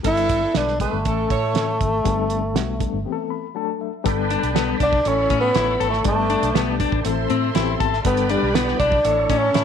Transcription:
0.03 G1 G3 B3 D4 E4 A4, kick, closed hi-hat
0.17 closed hi-hat
0.29 kick, closed hi-hat
0.54 B1 G3 B3 D4 G4 A4 B4, snare, closed hi-hat
0.68 snare
0.79 G3 A3 B3 D4 G4 A4 B4, kick, closed hi-hat
0.93 G1
1.04 A1 E3 A3 C#4 E4 A4, kick, closed hi-hat
1.30 A2 E4 A4 C#5, kick, closed hi-hat
1.54 E3 A3 C4 A4, snare, closed hi-hat
1.61 C#4
1.81 G#1, kick, closed hi-hat
2.04 G1 G3 B3 D4 G#4, kick, closed hi-hat
2.12 A4
2.30 closed hi-hat
2.54 B1 G3 B3 D4 F#4, snare, closed hi-hat
2.79 G3 B3 D4 A4, kick, closed hi-hat
2.93 G1
3.05 E3 B3 C4 G4
3.12 A4
3.30 B5
3.55 F#3 A3 D4 A4 A5
3.81 E5
4.04 G1 G3 B3 D4 G4 A4 B4 D5 G5 A5 B5, kick, closed hi-hat
4.30 D4, closed hi-hat
4.43 B1, closed hi-hat
4.54 G3 B3 D4 A4, snare, closed hi-hat
4.80 B1 D4, kick, closed hi-hat
4.93 kick
5.05 A1 E3 A3 C#4 E4 A4 C#5 E5 B5 C#6, closed hi-hat
5.30 A2 C#4, kick, closed hi-hat
5.40 B3
5.54 A1 E3 A3 C#4 E4 A4, snare, closed hi-hat
5.80 G#1 A4, closed hi-hat
5.90 A3, snare
6.04 G1 G3 A3 B3 D4 A4 B4 D5 G5 A5, kick, closed hi-hat
6.30 D4, closed hi-hat
6.43 B1, closed hi-hat
6.54 B1 G3 B3 D4 G4, snare, closed hi-hat
6.80 D4, kick, closed hi-hat
6.92 A1, kick
7.04 A1 E3 A3 C4 E4 A4 C5 E5 C6, closed hi-hat
7.30 A2 C4, closed hi-hat
7.55 A1 E3 B3 C4 E4 G4, snare, closed hi-hat
7.80 G#1 A4, kick, closed hi-hat
7.93 snare
8.04 G1 G3 A#3 B3 D4 G4 A4 B4 D5 G5 B5, kick, closed hi-hat
8.11 B3
8.17 closed hi-hat
8.29 G3 D4, closed hi-hat
8.43 B1
8.54 G3 B3 D4 E4, snare, closed hi-hat
8.68 snare
8.80 B1 D4, kick, closed hi-hat
8.92 kick
9.04 A1 E3 A3 E4 A4 C#5 E5 A5 C#6, closed hi-hat
9.29 A2 C#4, kick, closed hi-hat
9.38 C#4
9.53 A2 E3 A3 C#4 E4 A4, snare, closed hi-hat

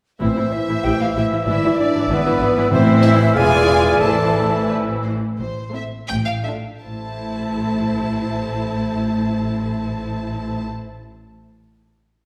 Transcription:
0.20 A1 A2 E3 C4 E4 C5 E5
0.37 A2 E3 E4
0.52 E4 E5
0.69 A2 E3 E4
0.83 A1 A2 E3 E4 G4 G5
1.00 A2 E3 E4 F4 F5
1.13 A1 A2 E4 E5
1.17 E3 E4
1.32 A2 E3 E4
1.45 G#1 G#2 E3 E4 D5 E5
1.63 G#2 E3 E4
1.79 D4 D5
1.95 G#2 E3 E4
2.09 G#1 G#2 E3 B3 E4 B4
2.24 G#2 E3 E4
2.40 G#1 G#2 E3 E4
2.56 G#2 E3 E4
2.70 A1 A2 E3 C4 E4 C5 E5
3.03 E4 E5
3.34 E1 E2 E3 F4 G#4 D5 F5 G#5
4.00 A1 A2 E3 E4 A4 C5 E5 A5
4.68 B4 C5
5.03 C5
5.38 A1 A2 C5
5.73 A3 C4 E4 A4 E5
6.08 A1 A2 G5
6.26 F5
6.43 A3 D4 F4 A4 E5
6.81 A1 A2 A3 E4 C5 A5

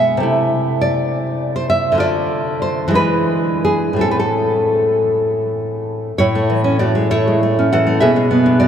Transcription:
Already playing: B2 G#3 D4 E5
0.17 C3 A3
0.23 E4
0.81 D5
1.56 C5
1.70 E5
1.92 D3 A3
1.98 F4 D5
2.62 C5
2.88 E3 G#3
2.94 D4 B4
3.65 G#4
3.93 A2 A3
3.99 C4 A4
4.11 B4
4.20 A4
6.18 A2 E4 C#5
6.35 A3
6.50 E3
6.64 C#4
6.79 A3 F#4 D5
6.95 G#3
7.11 A3 E4 C#5
7.27 G#3
7.43 A3
7.59 C#4
7.73 E3 A4 F#5
7.87 A3
8.00 B2 G#4 E5
8.16 G#3
8.31 B3
8.46 D4
8.60 G#3 F#4 D5

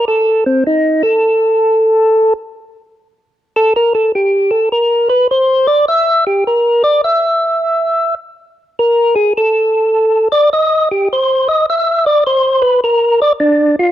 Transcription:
0.08 A4
0.46 C4
0.67 D#4
1.03 A4
3.56 A4
3.76 A#4
3.95 A4
4.15 G4
4.51 A4
4.72 A#4
5.09 B4
5.31 C5
5.67 D5
5.88 E5
6.26 G4
6.47 A#4
6.84 D5
7.04 E5
8.79 A#4
9.16 G#4
9.37 A4
10.32 D5
10.53 D#5
10.91 G4
11.13 C5
11.48 D#5
11.70 E5
12.06 D5
12.27 C5
12.62 B4
12.84 A#4
13.22 D5
13.40 D4
13.79 F4

